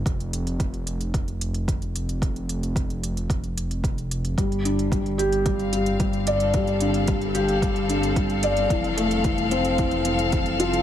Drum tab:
HH |xxxxxxxxxxxxxxxx|xxxxxxxxxxxxxxxx|xxxxxxxxxxxxxxxx|xxxxxxxxxxxxxxxx|
BD |o---o---o---o---|o---o---o---o---|o---o---o---o---|o---o---o---o---|

HH |xxxxxxxxxxxxxxxx|
BD |o---o---o---o---|